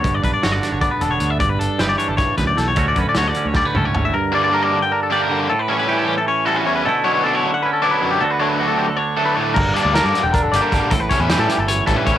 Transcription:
<<
  \new Staff \with { instrumentName = "Clean electric guitar" } { \time 7/8 \key g \lydian \tempo 4 = 155 cis''16 d''16 b'16 d''16 cis''16 d''8 cis''16 d''16 b'16 a'16 cis''8 e''16 | d''16 b'16 a'8 b'16 d''16 cis''16 a'16 cis''8 b'16 d''16 a'16 cis''16~ | cis''16 d''16 b'16 d''16 cis''16 d''8 cis''16 d''16 b'16 a'16 cis''8 e''16 | bes'8 d''16 d''16 bes'16 d''8 g''16 bes'16 a'16 d''16 bes'8 g'16 |
a'16 b'16 cis''16 b'8 a'16 g'16 a'16 cis''8 a'16 b'16 cis''16 b'16 | a'8 cis''16 cis''16 a'16 cis''8 fis''16 b'16 a'16 d''16 b'8 g'16 | a'16 b'16 cis''16 b'8 a'16 g'16 a'16 cis''8 a'16 b'16 cis''16 b'16 | bes'8 d''16 d''16 bes'16 d''8 g''16 bes'16 a'16 d''16 bes'8 g'16 |
a'16 b'16 cis''16 b'8 a'16 g'16 a'16 cis''8 a'16 b'16 cis''16 r16 | }
  \new Staff \with { instrumentName = "Clean electric guitar" } { \time 7/8 \key g \lydian << { r8 d'8 fis'8 d'8 b8 d'4 | r8 d'8 g'8 d'2 | <d a cis' fis'>8 cis'8 fis'8 cis'8 g16 a16 cis'4 | r8 d'8 bes'4 d'8 g'4 |
r8 cis'8 g'4 cis'8 fis'4 | <d a cis' e'>8 cis'8 d'16 e'8. cis'8 e'4 | <d b d' fis'>8 d'8 fis'4 d'8 a'4 | r8 d'8 bes'4 d'8 g'4 |
r8 cis'8 g'2~ g'8 | } \\ { g,4 d4. d4 | g,4 e4 g,8 fis,8 e,8 | d,4 d4. a,4 | g,4. d4. d8 |
a,4. e4. e,8 | b,4. d4. fis,8 | d,4. d4. a,8 | g,4. d4. d8 |
a,4. e8 fis,8 g,8 a,8 | } >> }
  \new Staff \with { instrumentName = "Overdriven electric guitar" } { \clef bass \time 7/8 \key g \lydian r2. r8 | r2. r8 | r2. r8 | r8 <d g bes d'>8 <d g bes d'>8 r4 <d g bes d'>8 <d g bes d'>8 |
r8 <e g cis' e'>8 <e g cis' e'>8 r4 <e g cis' e'>8 <e g cis' e'>8 | r8 <b, fis b d'>8 <b, fis b d'>8 r4 <b, fis b d'>8 <b, fis b d'>8 | r8 <d fis a d'>8 <d fis a d'>8 r4 <d fis a d'>8 <d fis a d'>8 | r8 <d g bes d'>8 <d g bes d'>8 r4 <d g bes d'>8 <d g bes d'>8 |
r8 <e g cis' e'>8 <e g cis' e'>8 r4 <e g cis' e'>8 <e g cis' e'>8 | }
  \new Staff \with { instrumentName = "Picked electric bass" } { \clef bass \time 7/8 \key g \lydian g,,8 b,,16 r16 g,,8 r16 g,,8 r16 e,,8 d,8 | g,,8 g,,16 r16 g,,8 r16 g,,8 r16 d,8 b,,8 | d,8 fis,16 r16 d,8 r16 d,8 r16 cis,8 gis,,8 | r2. r8 |
r2. r8 | r2. r8 | r2. r8 | g,,8 r16 d,8 g,16 r16 e,,8. g,,16 r16 g,,16 r16 |
a,,8 r16 e,8 a,16 r16 g,,8. a,,16 r16 a,,16 r16 | }
  \new DrumStaff \with { instrumentName = "Drums" } \drummode { \time 7/8 <hh bd>8 <hh bd>8 <hh sn>8 <hh sn>8 <hh bd>8 hh8 hh8 | <hh bd>8 hh8 <hh sn>8 hh8 <hh bd sn>8 <hh bd sn>8 <hh sn>8 | <hh bd>8 <hh bd>8 <hh sn>8 hh8 <bd sn>8 toml8 tomfh8 | r4 r4 r4. |
r4 r4 r4. | r4 r4 r4. | r4 r4 r4. | <cymc bd>8 hh8 <hh sn>8 <hh sn>8 <hh bd>8 hh8 <hh bd>8 |
<hh bd>8 <hh bd>8 <hh sn>8 <hh sn>8 hh8 <hh bd sn>8 <hh bd>8 | }
>>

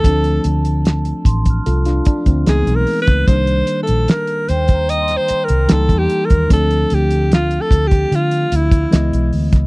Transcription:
<<
  \new Staff \with { instrumentName = "Vibraphone" } { \time 4/4 \key d \phrygian \tempo 4 = 74 a''4. c'''16 f'''2 r16 | r4. g''16 bes''16 c'''2 | r1 | }
  \new Staff \with { instrumentName = "Alto saxophone" } { \time 4/4 \key d \phrygian a'8 r2 r8 \tuplet 3/2 { aes'8 bes'8 ces''8 } | \tuplet 3/2 { c''4 a'8 } bes'8 c''8 \tuplet 3/2 { ees''8 c''8 bes'8 a'8 g'8 ais'8 } | a'8 g'8 \tuplet 3/2 { f'8 a'8 g'8 } f'8 e'4 r8 | }
  \new Staff \with { instrumentName = "Tine electric piano" } { \time 4/4 \key d \phrygian r2 <f' a'>16 <d' f'>16 d'16 <a c'>8 r8. | r1 | r1 | }
  \new Staff \with { instrumentName = "Tine electric piano" } { \time 4/4 \key d \phrygian <f a c' d'>2. <ees fes aes ces' ees'>4 | <ees g bes d'>2. <e g ais ees'>4 | <f a c' d'>2. <fes aes ces' ees''>4 | }
  \new Staff \with { instrumentName = "Fingered electric bass" } { \clef bass \time 4/4 \key d \phrygian d,8 d,4 a,,8 c,8 r16 d,16 des,16 ces,16 r16 des,16 | c,8 r16 bes,,16 r8 ees,4 r16 c,16 cis,16 e,16 r16 ees,16 | d,8 d,4 d,8 d8 d,8 des,16 ces,16 d,16 des,16 | }
  \new DrumStaff \with { instrumentName = "Drums" } \drummode { \time 4/4 <hh bd>16 hh16 hh16 hh16 <hh sn>16 hh16 <hh bd>16 <hh bd>16 hh16 <hh sn>16 <hh bd>16 <hh bd>16 <hh sn>16 hh16 hho16 <hh bd sn>16 | <hh bd>16 hh16 hh16 hh16 <hh sn>16 hh16 hh16 <hh bd>16 hh16 <hh sn>16 hh16 hh16 <hh sn>16 <hh bd>16 hh16 <hh bd>16 | <hh bd>16 hh16 hh16 hh16 <hh sn>16 hh16 <hh bd>16 <hh bd>16 hh16 hh16 hh16 <hh bd>16 <hh sn>16 hh16 hho16 <hh bd sn>16 | }
>>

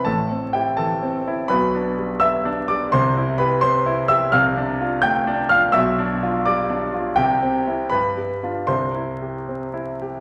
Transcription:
\new Staff \with { instrumentName = "Grand piano" } { \time 6/8 \key c \major \tempo 4. = 84 << { <a' a''>4 <g' g''>8 <a' a''>4. | <b' b''>4. <e'' e'''>4 <d'' d'''>8 | <c'' c'''>4 <b' b''>8 <c'' c'''>4 <e'' e'''>8 | <f'' f'''>4. <g'' g'''>4 <f'' f'''>8 |
<e'' e'''>4. <d'' d'''>8 r4 | <g' g''>4. <b' b''>4. | <c'' c'''>2~ <c'' c'''>8 r8 | } \\ { <a,, a,>8 c'8 e'8 e8 c'8 e'8 | <b,, b,>8 d'8 g8 b8 d'8 g8 | <c, c>8 e'8 g'8 c'8 e'8 g'8 | <c, c>8 d'8 f'8 a8 d'8 f'8 |
<b,, b,>8 d'8 f'8 g8 d'8 f'8 | <c, c>8 c'8 <c' e'>8 g,8 g8 <d' f'>8 | <c, c>8 e'8 g'8 c'8 e'8 g'8 | } >> }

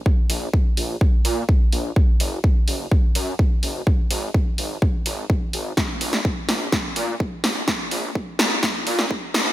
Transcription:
<<
  \new Staff \with { instrumentName = "Detuned saw bass" } { \clef bass \time 4/4 \key ges \lydian \tempo 4 = 126 r8 bes,,8 r8 bes,,8 r8 bes,8 r8 bes,,8 | r8 ges,,8 r8 ges,,8 r8 ges,8 r8 ges,,8 | r8 aes,,8 r8 aes,,8 r8 aes,,8 r8 aes,,8 | r8 bes,,8 r8 bes,,8 r8 bes,8 r8 bes,,8 |
r8 bes,,8 r8 bes,,8 r8 bes,8 r8 bes,,8 | }
  \new DrumStaff \with { instrumentName = "Drums" } \drummode { \time 4/4 bd8 hho8 bd8 hho8 bd8 hho8 bd8 hho8 | bd8 hho8 bd8 hho8 bd8 hho8 bd8 hho8 | bd8 hho8 bd8 hho8 bd8 hho8 bd8 hho8 | <bd sn>8 hho16 sn16 bd8 <hho sn>8 <bd sn>8 hho8 bd8 <hho sn>8 |
<bd sn>8 hho8 bd8 <hho sn>8 <bd sn>8 hho16 sn16 bd8 <hho sn>8 | }
>>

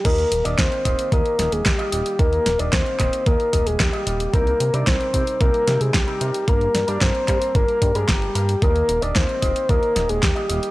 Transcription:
<<
  \new Staff \with { instrumentName = "Soft synth lead" } { \time 4/4 \key ees \major \tempo 4 = 112 bes'8. d''16 c''4 bes'8. aes'16 g'4 | bes'8. d''16 c''4 bes'8. aes'16 g'4 | bes'8. d''16 c''4 bes'8. aes'16 g'4 | bes'8. d''16 c''4 bes'8. aes'16 g'4 |
bes'8. d''16 c''4 bes'8. aes'16 g'4 | }
  \new Staff \with { instrumentName = "Clean electric guitar" } { \time 4/4 \key ees \major <ees bes f' g' ees''>8 r16 <ees bes f' g' ees''>8. <ees bes f' g' ees''>8 <ees bes f' g' ees''>8 <ees bes f' g' ees''>8 r16 <ees bes f' g' ees''>16 <ees bes f' g' ees''>8 | <ees bes f' g' ees''>8 r16 <ees bes f' g' ees''>8. <ees bes f' g' ees''>8 <ees bes f' g' ees''>8 <ees bes f' g' ees''>8 r16 <ees bes f' g' ees''>16 <c bes f' g' ees''>8 | <c g c' ees' bes'>8 r16 <c g c' ees' bes'>8. <c g c' ees' bes'>8 <c g c' ees' bes'>8 <c g c' ees' bes'>8 r16 <c g c' ees' bes'>16 <g, g c' ees' bes'>8 | <g, g bes d' bes'>8 r16 <g, g bes d' bes'>8. <g, g bes d' bes'>8 <g, g bes d' bes'>8 r16 <g, g bes d' bes'>8. <g bes d' bes'>16 r16 |
<ees bes f' g' ees''>8 r16 <ees bes f' g' ees''>8. <ees bes f' g' ees''>8 <ees bes f' g' ees''>8 <ees bes f' g' ees''>8 r16 <ees bes f' g' ees''>16 <ees bes f' g' ees''>8 | }
  \new Staff \with { instrumentName = "Analog synth bass" } { \clef bass \time 4/4 \key ees \major ees,8 ees,,16 ees,,16 ees,16 r16 ees,,16 r16 ees,16 r16 ees,,16 ees,,16 ees,16 r16 ees,,16 r16 | ees,8 ees,,16 ees,,16 ees,16 r16 ees,,16 r16 ees,16 r16 ees,,16 ees,,16 ees,16 r16 ees,,8 | c,8 c16 c16 c,16 r16 c16 r16 c,16 r16 c16 c16 c,16 r16 c16 r16 | g,,8 g,16 g,16 g,,16 r16 g,16 r16 g,,16 r16 g,16 g,16 g,,8 g,8 |
ees,8 ees,,16 ees,,16 ees,16 r16 ees,,16 r16 ees,16 r16 ees,,16 ees,,16 ees,16 r16 ees,,16 r16 | }
  \new DrumStaff \with { instrumentName = "Drums" } \drummode { \time 4/4 <cymc hh bd>16 hh16 hh16 hh16 <hc hh bd sn>16 hh16 <hh bd>16 hh16 <hh bd>16 hh16 <hh sn>16 hh16 <hc hh bd sn>16 hh16 hh16 hh16 | <hh bd>16 hh16 <hh sn>16 hh16 <hc hh bd sn>16 hh16 <hc hh bd>16 hh16 <hh bd>16 hh16 <hh bd>16 hh16 <hc hh bd sn>16 hh16 hh16 hh16 | <hh bd>16 hh16 hh16 hh16 <hc hh bd sn>16 hh16 <hh bd>16 hh16 <hh bd>16 hh16 <hh sn>16 hh16 <hc hh bd sn>16 hh16 hh16 hh16 | <hh bd>16 hh16 <hh sn>16 hh16 <hc hh bd sn>16 hh16 <hc hh bd>16 hh16 <hh bd>16 hh16 <hh bd>16 hh16 <hc hh bd sn>16 hh16 hh16 hh16 |
<hh bd>16 hh16 hh16 hh16 <hc hh bd sn>16 hh16 <hh bd>16 hh16 <hh bd>16 hh16 <hh sn>16 hh16 <hc hh bd sn>16 hh16 hh16 hh16 | }
>>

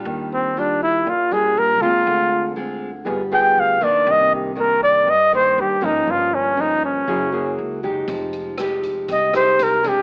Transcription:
<<
  \new Staff \with { instrumentName = "Flugelhorn" } { \time 4/4 \key ees \major \tempo 4 = 120 r8 c'8 d'8 fes'8 f'8 aes'8 bes'8 f'8~ | f'4 r4. g''8 f''8 d''8 | ees''8 g'8 bes'8 d''8 ees''8 c''8 g'8 ees'8 | f'8 des'8 ees'8 des'4. r4 |
r2 ees''8 c''8 bes'8 g'8 | }
  \new Staff \with { instrumentName = "Nylon-string guitar" } { \time 4/4 \key ees \major << { <g d' f'>4 <g d' f'>4 r8 <g d' f'>4 <aes c' f'>8~ | <aes c' f'>4 <aes c' f'>8 r8 <b f' aes'>8 <b f' aes'>4 <ees bes d'>8~ | <ees bes d'>4 <ees bes d'>4 r8 <ees bes d'>4 <f bes des'>8~ | <f bes des'>4 <f bes des'>4 <bes fes' aes'>8 <bes fes' aes'>4 <aes ees' g'>8~ |
<aes ees' g'>4 <aes ees' g'>4. <aes ees' g'>4 <aes c' d'>8 | } \\ { ees2 bes,2 | d2 g2 | c2 g,2 | g,2 ges2 |
f2 c2 | } >> }
  \new Staff \with { instrumentName = "Upright bass" } { \clef bass \time 4/4 \key ees \major ees,2 bes,,4 bes,,8 ees,8 | d,2 g,,4 d,8 b,,8 | c,2 g,4 g,8 aes,,8 | g,,2 ges,,4 des,8 ges,,8 |
f,,2 c,4 c,8 f,,8 | }
  \new DrumStaff \with { instrumentName = "Drums" } \drummode { \time 4/4 r4 r4 r4 r4 | r4 r4 r4 r4 | r4 r4 r4 r4 | r4 r4 r4 r4 |
<hh bd>8 hh8 <hh ss>8 <hh bd>8 <hh bd>8 <hh ss>8 hh8 <hh bd>8 | }
>>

